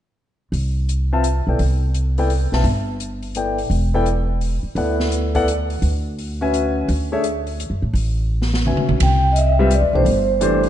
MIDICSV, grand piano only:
0, 0, Header, 1, 2, 480
1, 0, Start_track
1, 0, Key_signature, 0, "major"
1, 0, Tempo, 352734
1, 731, Time_signature, 3, 2, 24, 8
1, 14550, End_track
2, 0, Start_track
2, 0, Title_t, "Grand piano"
2, 0, Program_c, 0, 0
2, 1532, Note_on_c, 0, 60, 58
2, 1534, Note_on_c, 0, 65, 56
2, 1534, Note_on_c, 0, 71, 57
2, 1542, Note_on_c, 0, 76, 53
2, 1542, Note_on_c, 0, 81, 62
2, 1680, Note_off_c, 0, 60, 0
2, 1681, Note_off_c, 0, 65, 0
2, 1681, Note_off_c, 0, 71, 0
2, 1685, Note_off_c, 0, 76, 0
2, 1685, Note_off_c, 0, 81, 0
2, 2013, Note_on_c, 0, 59, 46
2, 2015, Note_on_c, 0, 64, 41
2, 2019, Note_on_c, 0, 69, 44
2, 2021, Note_on_c, 0, 74, 36
2, 2028, Note_on_c, 0, 79, 50
2, 2161, Note_off_c, 0, 59, 0
2, 2162, Note_off_c, 0, 64, 0
2, 2164, Note_off_c, 0, 69, 0
2, 2165, Note_off_c, 0, 74, 0
2, 2168, Note_off_c, 0, 79, 0
2, 2967, Note_on_c, 0, 59, 56
2, 2969, Note_on_c, 0, 64, 49
2, 2974, Note_on_c, 0, 69, 47
2, 2979, Note_on_c, 0, 74, 52
2, 2985, Note_on_c, 0, 79, 61
2, 3119, Note_off_c, 0, 59, 0
2, 3119, Note_off_c, 0, 64, 0
2, 3122, Note_off_c, 0, 69, 0
2, 3124, Note_off_c, 0, 74, 0
2, 3127, Note_off_c, 0, 79, 0
2, 3438, Note_on_c, 0, 60, 49
2, 3443, Note_on_c, 0, 71, 48
2, 3445, Note_on_c, 0, 65, 45
2, 3455, Note_on_c, 0, 76, 43
2, 3455, Note_on_c, 0, 81, 50
2, 3595, Note_off_c, 0, 60, 0
2, 3597, Note_off_c, 0, 71, 0
2, 3598, Note_off_c, 0, 65, 0
2, 3603, Note_off_c, 0, 76, 0
2, 3603, Note_off_c, 0, 81, 0
2, 4569, Note_on_c, 0, 59, 44
2, 4575, Note_on_c, 0, 69, 36
2, 4576, Note_on_c, 0, 64, 39
2, 4583, Note_on_c, 0, 79, 51
2, 4585, Note_on_c, 0, 74, 36
2, 4851, Note_off_c, 0, 59, 0
2, 4854, Note_off_c, 0, 64, 0
2, 4854, Note_off_c, 0, 69, 0
2, 4858, Note_off_c, 0, 74, 0
2, 4858, Note_off_c, 0, 79, 0
2, 5361, Note_on_c, 0, 59, 59
2, 5366, Note_on_c, 0, 64, 58
2, 5368, Note_on_c, 0, 69, 53
2, 5373, Note_on_c, 0, 74, 56
2, 5378, Note_on_c, 0, 79, 68
2, 5517, Note_off_c, 0, 59, 0
2, 5520, Note_off_c, 0, 64, 0
2, 5521, Note_off_c, 0, 69, 0
2, 5523, Note_off_c, 0, 74, 0
2, 5526, Note_off_c, 0, 79, 0
2, 6480, Note_on_c, 0, 59, 47
2, 6486, Note_on_c, 0, 64, 49
2, 6490, Note_on_c, 0, 69, 45
2, 6490, Note_on_c, 0, 74, 45
2, 6498, Note_on_c, 0, 78, 53
2, 7217, Note_off_c, 0, 59, 0
2, 7220, Note_off_c, 0, 64, 0
2, 7222, Note_off_c, 0, 69, 0
2, 7222, Note_off_c, 0, 74, 0
2, 7226, Note_off_c, 0, 78, 0
2, 7276, Note_on_c, 0, 69, 58
2, 7277, Note_on_c, 0, 59, 66
2, 7280, Note_on_c, 0, 64, 60
2, 7284, Note_on_c, 0, 74, 58
2, 7292, Note_on_c, 0, 78, 74
2, 7436, Note_off_c, 0, 59, 0
2, 7436, Note_off_c, 0, 69, 0
2, 7437, Note_off_c, 0, 64, 0
2, 7440, Note_off_c, 0, 74, 0
2, 7444, Note_off_c, 0, 78, 0
2, 8724, Note_on_c, 0, 66, 55
2, 8729, Note_on_c, 0, 61, 58
2, 8734, Note_on_c, 0, 71, 51
2, 8737, Note_on_c, 0, 76, 56
2, 8740, Note_on_c, 0, 80, 61
2, 9343, Note_off_c, 0, 66, 0
2, 9345, Note_off_c, 0, 61, 0
2, 9348, Note_off_c, 0, 71, 0
2, 9350, Note_off_c, 0, 76, 0
2, 9351, Note_off_c, 0, 80, 0
2, 9687, Note_on_c, 0, 62, 48
2, 9690, Note_on_c, 0, 57, 52
2, 9692, Note_on_c, 0, 68, 55
2, 9697, Note_on_c, 0, 73, 54
2, 9702, Note_on_c, 0, 76, 67
2, 9842, Note_off_c, 0, 62, 0
2, 9843, Note_off_c, 0, 57, 0
2, 9844, Note_off_c, 0, 68, 0
2, 9846, Note_off_c, 0, 73, 0
2, 9849, Note_off_c, 0, 76, 0
2, 11787, Note_on_c, 0, 61, 41
2, 11788, Note_on_c, 0, 66, 41
2, 11788, Note_on_c, 0, 71, 40
2, 11793, Note_on_c, 0, 76, 42
2, 11802, Note_on_c, 0, 80, 50
2, 12261, Note_off_c, 0, 61, 0
2, 12262, Note_off_c, 0, 66, 0
2, 12262, Note_off_c, 0, 71, 0
2, 12265, Note_off_c, 0, 76, 0
2, 12269, Note_off_c, 0, 80, 0
2, 13051, Note_on_c, 0, 55, 78
2, 13058, Note_on_c, 0, 60, 71
2, 13062, Note_on_c, 0, 65, 66
2, 13067, Note_on_c, 0, 71, 66
2, 13067, Note_on_c, 0, 76, 77
2, 13201, Note_off_c, 0, 55, 0
2, 13205, Note_off_c, 0, 60, 0
2, 13207, Note_off_c, 0, 65, 0
2, 13209, Note_off_c, 0, 71, 0
2, 13209, Note_off_c, 0, 76, 0
2, 13529, Note_on_c, 0, 52, 45
2, 13529, Note_on_c, 0, 57, 42
2, 13536, Note_on_c, 0, 62, 48
2, 13540, Note_on_c, 0, 67, 45
2, 13544, Note_on_c, 0, 72, 53
2, 13680, Note_off_c, 0, 52, 0
2, 13680, Note_off_c, 0, 57, 0
2, 13683, Note_off_c, 0, 62, 0
2, 13685, Note_off_c, 0, 67, 0
2, 13687, Note_off_c, 0, 72, 0
2, 14159, Note_on_c, 0, 52, 59
2, 14165, Note_on_c, 0, 62, 63
2, 14167, Note_on_c, 0, 57, 54
2, 14172, Note_on_c, 0, 67, 51
2, 14182, Note_on_c, 0, 72, 67
2, 14550, Note_off_c, 0, 52, 0
2, 14550, Note_off_c, 0, 57, 0
2, 14550, Note_off_c, 0, 62, 0
2, 14550, Note_off_c, 0, 67, 0
2, 14550, Note_off_c, 0, 72, 0
2, 14550, End_track
0, 0, End_of_file